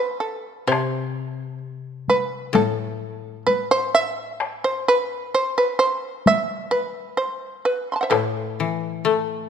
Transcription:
Already playing: B4
0.20 A4
0.67 C3 C5
0.72 taiko rim
1.20 B4
2.08 B4, taiko high
2.53 A2 A4, taiko high
3.13 F#4
3.47 B4, taiko high
3.71 C5
3.95 E5
4.41 taiko rim
4.64 C5
4.88 B4
5.34 C5
5.58 B4
5.79 C5
6.26 E5, taiko high
6.71 B4
7.17 C5
7.65 B4
7.92 A5 B5 C6
8.01 C5 E5 F#5
8.10 A2 A4 B4, taiko rim
8.60 E3
9.05 A3

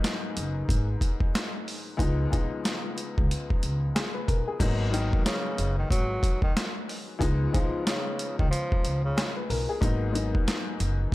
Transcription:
Already playing: G#2 F#3 A#3 B3 D#4
0.04 cross-stick, snare, closed hi-hat
0.37 F#1, closed hi-hat
0.69 G#1, kick, closed hi-hat
1.01 kick, closed hi-hat
1.20 kick
1.35 cross-stick, snare, closed hi-hat
1.68 open hi-hat
1.97 C#2 F3 G#3 B3 D#4, kick, closed hi-hat
2.31 B1 C#2 F3 G#3 B3 D#4, kick, closed hi-hat
2.65 cross-stick, snare, closed hi-hat
2.98 closed hi-hat
3.18 C#2, kick
3.31 closed hi-hat
3.50 muted upright bass stroke, kick
3.63 C#2, closed hi-hat
3.95 G#4, cross-stick, snare, closed hi-hat
4.14 B4
4.28 B1 A#4, kick, closed hi-hat
4.48 G#4
4.60 G#1 G#2 F#3 A#3 B3 D#4, kick, closed hi-hat, crash
4.91 G#2 D#3 F#3 A#3 B3 D#4, closed hi-hat
5.13 kick
5.25 C#3, cross-stick, snare, closed hi-hat
5.58 F#1, closed hi-hat
5.78 D#3
5.90 G#1 F#3, kick, closed hi-hat
6.23 kick, closed hi-hat
6.42 D#3, kick
6.57 cross-stick, snare, closed hi-hat
6.89 open hi-hat
7.19 C#2 F3 G#3 B3 D#4, kick, closed hi-hat
7.52 B1 C#2 F3 G#3 B3 D#4, kick, closed hi-hat
7.87 C#3, cross-stick, snare, closed hi-hat
8.19 closed hi-hat
8.39 C#2 D#3, kick
8.51 F3, closed hi-hat
8.72 kick
8.85 C#2, closed hi-hat
9.04 C#3
9.17 G#4, cross-stick, snare, closed hi-hat
9.36 B4
9.50 B1 A#4, open hi-hat
9.69 G#4
9.81 G#1 G#2 F#3 A#3 B3 D#4, kick, closed hi-hat
10.12 G#2 F#3 A#3 B3 D#4, closed hi-hat
10.35 kick
10.48 cross-stick, snare, closed hi-hat
10.80 F#1, closed hi-hat

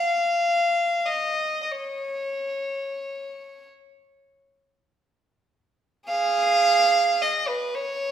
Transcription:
Already playing: F5
1.05 D#5
1.63 D#5
1.71 C#5
6.08 G#4 F5
7.22 D#5
7.48 B4
7.75 C#5

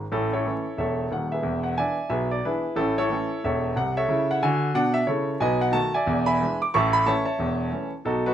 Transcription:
0.12 A1 A2 C#4 E4 A4
0.33 E4 A4 C#5
0.46 E3 A3 C#4
0.77 E1 E2 A4 C#5 E5
1.11 D#1 D#2 F#5
1.32 G#4 B4 E5
1.43 E1 E2
1.63 F#5
1.77 E3 B3 D4 D5 E5 G#5
2.09 B1 B2 G#4 B4 E5
2.31 D5
2.45 E3 B3 D4 E4 G#4 B4
2.76 A1 A2 C#4 E4 A4
2.98 E4 A4 C#5
3.09 E3 A3 C#4
3.44 E1 E2 A4 C#5 E5
3.76 C2 C3 F#5
3.97 A4 C#5 E5
4.09 C#3 E4
4.31 F#5
4.43 D3 F#4 G#5
4.74 B2 D4 F#5
4.94 E5
5.07 C#3 E4 A4 C#5
5.40 B1 B2 B4 D#5 G#5
5.61 F#5
5.72 D#3 A3 F#4 A5
5.94 D5 E5 G#5
6.06 E1 E2
6.26 E5 G#5 B5
6.41 E3 G#3 D4
6.62 D6
6.74 A1 A2 E5 A5 C#6
6.93 B5
7.06 E3 A3 C#4 C#5 E5 A5
7.25 C#5 E5 A5
7.39 E1 E2
7.72 E3 A3 C#4
8.05 B1 B2 D#4 F#4 A4
8.26 D#4 F#4 B4

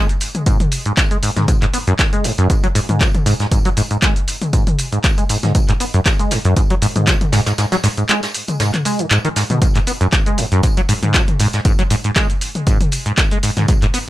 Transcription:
0.09 closed hi-hat, shaker
0.20 open hi-hat, tambourine, shaker
0.35 closed hi-hat, mid tom, shaker
0.46 G#2, kick, closed hi-hat, tambourine, shaker
0.60 closed hi-hat, mid tom, shaker
0.72 open hi-hat, tambourine, shaker
0.86 G#2, closed hi-hat, shaker
0.97 kick, snare, clap, closed hi-hat, tambourine, shaker
1.11 G#3, closed hi-hat, shaker
1.23 G#2, open hi-hat, tambourine, shaker
1.36 G#2, snare, closed hi-hat, mid tom, shaker
1.48 G#2, kick, closed hi-hat, tambourine, shaker
1.62 G#2, clap, closed hi-hat, shaker
1.73 B3, open hi-hat, tambourine, shaker
1.87 F#2, closed hi-hat, shaker
1.99 kick, snare, clap, closed hi-hat, tambourine, shaker
2.13 G#3, closed hi-hat, shaker
2.24 G#2, open hi-hat, tambourine, shaker
2.38 F#2, closed hi-hat, shaker
2.50 kick, closed hi-hat, tambourine, shaker
2.63 F#3, closed hi-hat
2.75 G#2, open hi-hat, tambourine, shaker
2.89 G#2, closed hi-hat, mid tom, shaker
3.01 F#3, kick, snare, clap, closed hi-hat, tambourine, shaker
3.15 closed hi-hat, mid tom
3.26 G#2, open hi-hat, tambourine, shaker
3.40 G#2, snare, closed hi-hat, shaker
3.51 G#2, kick, closed hi-hat, tambourine, shaker
3.65 F#3, closed hi-hat, shaker
3.77 G#2, open hi-hat, tambourine, shaker
3.91 G#2, closed hi-hat, shaker
4.02 G#3, kick, snare, clap, closed hi-hat, tambourine, shaker
4.16 closed hi-hat, shaker
4.28 open hi-hat, tambourine, shaker
4.42 closed hi-hat, mid tom, shaker
4.53 G#2, kick, closed hi-hat, tambourine, shaker
4.67 closed hi-hat, mid tom, shaker
4.79 open hi-hat, tambourine, shaker
4.92 G#2, closed hi-hat, shaker
5.04 kick, snare, clap, closed hi-hat, tambourine, shaker
5.18 G#3, closed hi-hat, shaker
5.29 G#2, open hi-hat, tambourine, shaker
5.43 G#2, snare, closed hi-hat, mid tom, shaker
5.55 kick, closed hi-hat, tambourine, shaker
5.69 G#2, clap, closed hi-hat, shaker
5.80 B3, open hi-hat, tambourine, shaker
5.94 F#2, closed hi-hat, shaker
6.06 kick, snare, clap, closed hi-hat, tambourine, shaker
6.19 G#3, closed hi-hat, shaker
6.31 G#2, snare, open hi-hat, tambourine, shaker
6.45 F#2, closed hi-hat, shaker
6.56 G#2, kick, closed hi-hat, tambourine, shaker
6.70 F#3, closed hi-hat
6.82 G#2, open hi-hat, tambourine, shaker
6.96 G#2, closed hi-hat, mid tom, shaker
7.07 F#3, kick, snare, clap, closed hi-hat, tambourine, shaker
7.21 closed hi-hat, mid tom
7.32 G#2, snare, open hi-hat, tambourine, shaker
7.46 G#2, snare, closed hi-hat, tambourine, shaker
7.58 G#2, snare, closed hi-hat, tambourine, shaker
7.72 F#3, snare, closed hi-hat, tambourine, shaker
7.83 G#2, snare, open hi-hat, tambourine, shaker
7.97 G#2, closed hi-hat, shaker
8.09 G#3, clap, closed hi-hat, tambourine, shaker
8.23 snare, closed hi-hat, tambourine, shaker
8.34 open hi-hat, shaker
8.48 closed hi-hat, mid tom, tambourine, shaker
8.60 G#2, snare, closed hi-hat, tambourine, shaker
8.74 clap, closed hi-hat, mid tom, shaker
8.85 G#3, open hi-hat, tambourine, shaker
8.99 D#3, closed hi-hat, shaker
9.10 G#2, clap, closed hi-hat, tambourine, shaker
9.25 D#3, closed hi-hat, shaker
9.36 G#2, snare, open hi-hat, tambourine, shaker
9.50 B2, closed hi-hat, mid tom, shaker
9.62 G#2, kick, closed hi-hat, tambourine, shaker
9.75 G#2, clap, closed hi-hat, shaker
9.87 B3, open hi-hat, tambourine, shaker
10.01 F#2, closed hi-hat, shaker
10.12 kick, snare, clap, closed hi-hat, tambourine, shaker
10.26 G#3, closed hi-hat, shaker
10.38 G#2, open hi-hat, tambourine, shaker
10.52 F#2, closed hi-hat, shaker
10.63 G#2, kick, closed hi-hat, tambourine, shaker
10.77 F#3, closed hi-hat
10.88 G#2, open hi-hat, tambourine, shaker
11.03 G#2, closed hi-hat, mid tom, shaker
11.14 F#3, kick, snare, clap, closed hi-hat, tambourine, shaker
11.28 closed hi-hat, mid tom
11.40 G#2, open hi-hat, tambourine, shaker
11.53 G#2, snare, closed hi-hat, shaker
11.65 G#2, kick, closed hi-hat, tambourine, shaker
11.79 F#3, closed hi-hat, shaker
11.90 G#2, open hi-hat, tambourine, shaker
12.04 G#2, closed hi-hat, shaker
12.16 G#3, kick, snare, clap, closed hi-hat, tambourine, shaker
12.30 closed hi-hat, shaker
12.41 open hi-hat, tambourine, shaker
12.55 closed hi-hat, mid tom, shaker
12.67 G#2, kick, closed hi-hat, tambourine, shaker
12.81 closed hi-hat, mid tom, shaker
12.92 open hi-hat, tambourine, shaker
13.06 G#2, closed hi-hat, shaker
13.17 kick, snare, clap, closed hi-hat, tambourine, shaker
13.31 G#3, closed hi-hat, shaker
13.43 G#2, open hi-hat, tambourine, shaker
13.57 G#2, snare, closed hi-hat, mid tom, shaker
13.68 G#2, kick, closed hi-hat, tambourine, shaker
13.82 G#2, clap, closed hi-hat, shaker
13.94 B3, open hi-hat, tambourine, shaker

